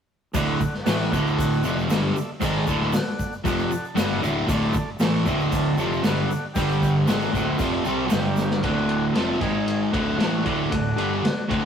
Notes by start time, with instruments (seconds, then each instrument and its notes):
0.34 fingered electric bass D1, overdriven electric guitar D2 A2 D3, transistor combo organ A4 D5 F#5, kick, open hi-hat, shaker
0.60 muted fingered electric bass stroke, muted overdriven electric guitar stroke, kick, shaker
0.74 snare
0.84 fingered electric bass A1, overdriven electric guitar A2 E3, transistor combo organ A4 D5 F#5, snare, open hi-hat, shaker
0.88 overdriven electric guitar A3
1.11 fingered electric bass D1, overdriven electric guitar D2 A2 D3, kick, shaker
1.27 shaker
1.36 transistor combo organ A4 D5 F#5, kick, open hi-hat, shaker
1.52 shaker
1.62 fingered electric bass F1, overdriven electric guitar F2 C3 F3, shaker
1.78 shaker
1.88 fingered electric bass G1, overdriven electric guitar G2 D3 G3, transistor combo organ A4 D5 E5, snare, open hi-hat, shaker
2.14 muted fingered electric bass stroke, muted overdriven electric guitar stroke, shaker
2.40 fingered electric bass G#1, overdriven electric guitar G#2 D#3 G#3, transistor combo organ A4 D5 A5, kick, open hi-hat, shaker
2.67 fingered electric bass D1, overdriven electric guitar D2 A2 D3, kick, shaker
2.81 snare
2.93 transistor combo organ A4 D5 F#5, snare, open hi-hat, shaker
3.19 kick, shaker
3.32 shaker
3.44 fingered electric bass F1, overdriven electric guitar F2 C3 F3, transistor combo organ A4 D5 F#5, kick, open hi-hat, shaker
3.59 shaker
3.70 transistor combo organ A5, muted overdriven electric guitar stroke, shaker
3.84 shaker
3.95 fingered electric bass G1, overdriven electric guitar G2 D3 G3, transistor combo organ A4 D5 F#5, snare, open hi-hat, shaker
4.21 fingered electric bass D1, overdriven electric guitar D2 A2 D3, transistor combo organ E5, shaker
4.47 fingered electric bass D1, overdriven electric guitar D2 A2 D3, transistor combo organ A4 D5 A5, kick, open hi-hat, shaker
4.73 muted fingered electric bass stroke, muted overdriven electric guitar stroke, kick, shaker
4.99 fingered electric bass A1, overdriven electric guitar A2 E3 A3, transistor combo organ A4 D5 E5, snare, open hi-hat, shaker
5.26 fingered electric bass D1, overdriven electric guitar D2 A2 D3, kick, shaker
5.40 shaker
5.52 transistor combo organ A4 D5 A5, kick, open hi-hat, shaker
5.76 fingered electric bass F1, overdriven electric guitar F2 C3 F3, shaker
5.93 shaker
6.03 fingered electric bass G1, overdriven electric guitar G2 D3 G3, transistor combo organ A4 D5 F#5, snare, open hi-hat, shaker
6.29 muted fingered electric bass stroke, muted overdriven electric guitar stroke, shaker
6.54 fingered electric bass G1, overdriven electric guitar G2 D3, transistor combo organ G4 D5 G5, kick, open hi-hat, shaker
6.58 overdriven electric guitar G3
6.70 shaker
6.82 kick, shaker
6.95 snare
7.06 fingered electric bass G#1, overdriven electric guitar G#2 D#3 G#3, transistor combo organ A4 D5 F#5, snare, open hi-hat, shaker
7.21 shaker
7.33 fingered electric bass D1, overdriven electric guitar D2 A2 D3, kick, shaker
7.58 fingered electric bass F1, overdriven electric guitar F2 C3 F3, transistor combo organ A4 D5 E5, kick, open hi-hat, shaker
7.83 fingered electric bass C2, overdriven electric guitar C3 G3 C4, transistor combo organ A5, shaker
8.10 fingered electric bass G1, overdriven electric guitar G2 D3 G3, transistor combo organ G4 D5 G5, snare, open hi-hat, shaker
8.36 snare, shaker
8.51 snare
8.63 fingered electric bass D1, overdriven electric guitar D2 A2 D3, transistor combo organ A4 D5 F#5, kick, ride
8.89 ride
9.14 fingered electric bass F1, overdriven electric guitar F2 C3 F3, transistor combo organ A4 D5 A5, snare, ride
9.40 fingered electric bass G#1, overdriven electric guitar G#2 D#3 G#3, transistor combo organ G#4 D#5 G#5, kick, ride
9.68 ride
9.91 fingered electric bass D1, overdriven electric guitar D2 A2 D3, transistor combo organ A4 D5 F#5, kick, ride
10.18 fingered electric bass A1, overdriven electric guitar A2 E3 A3, snare, ride
10.44 fingered electric bass D1, overdriven electric guitar D2 A2 D3, kick, ride
10.71 fingered electric bass D1, overdriven electric guitar D2 A2, transistor combo organ A4 D5 F#5, kick, ride
10.96 fingered electric bass G1, overdriven electric guitar G2 D3 G3, ride
11.23 transistor combo organ A4 D5 F#5, muted overdriven electric guitar stroke, snare, ride
11.48 fingered electric bass D1, overdriven electric guitar D2 A2 D3, transistor combo organ A4 D5 F#5, kick, ride